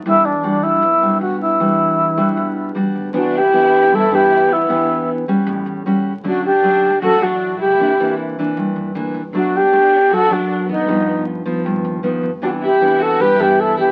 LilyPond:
<<
  \new Staff \with { instrumentName = "Alto flute" } { \time 4/4 \key e \minor \tempo 4 = 155 e'8 d'4 e'4. fis'8 e'8~ | e'2. r4 | fis'8 g'4. a'8 g'4 e'8~ | e'4 r2. |
fis'8 g'4. a'8 fis'4 g'8~ | g'4 r2. | fis'8 g'4. a'8 fis'4 dis'8~ | dis'4 r2. |
fis'8 g'4 a'8 b'8 g'8 a'8 g'8 | }
  \new Staff \with { instrumentName = "Violin section" } { \time 4/4 \key e \minor r1 | r1 | d'8 e'4. e'8 e'4 b8~ | b4 r2. |
d'8 d'4. fis'8 d'4 e'8~ | e'4 r2. | d'8 d'4. fis'8 d'4 b8~ | b4 r2. |
d'8 e'4 fis'8 g'8 e'8 e'8 e'8 | }
  \new Staff \with { instrumentName = "Nylon-string guitar" } { \time 4/4 \key e \minor << { <g d' fis'>8 r8 <g d' fis'>4 r8 <g d' fis'>4. | <g d' fis'>4. <g d' fis'>4. <g d' fis'>4 | <e b d'>8 r8 <e b d'>4. <e b d'>4. | <b d' g'>4. <g cis' fis'>4. <g cis' fis'>8 r8 |
<fis a cis'>8 r8 <fis a cis'>8 r8 <fis a cis'>8 <fis a>4. | <e bes d'>8 <e bes d'>4 <e bes d'>4. <e bes d'>8 r8 | <fis a d'>8 r8 <a d'>4. <fis a d'>4. | <f b dis'>4. <f b dis'>4. <f b dis'>8 r8 |
<e b d'>8 r8 <e b d'>4. <e b d'>4. | } \\ { e2 b,2 | e2 b,2 | c2 g,2 | e2 a,2 |
d2 a,2 | c2 g,2 | b,2 fis,2 | g,2 g,2 |
c2 g,2 | } >> }
  \new Staff \with { instrumentName = "Upright bass" } { \clef bass \time 4/4 \key e \minor e,4. b,,8 b,,4 b,,4 | e,4. b,,8 b,,4 e,8 d,8 | c,2 g,8 g,4 d,8 | e,2 a,,8 e,4 cis,8 |
d,2 a,,8 a,,4 cis,8 | c,2 g,8 g,8 d,8 c,8 | b,,2 fis,8 fis,4 b,,8 | g,,2 dis,8 dis,4 g,,8 |
c,2 g,8 g,4 c,8 | }
>>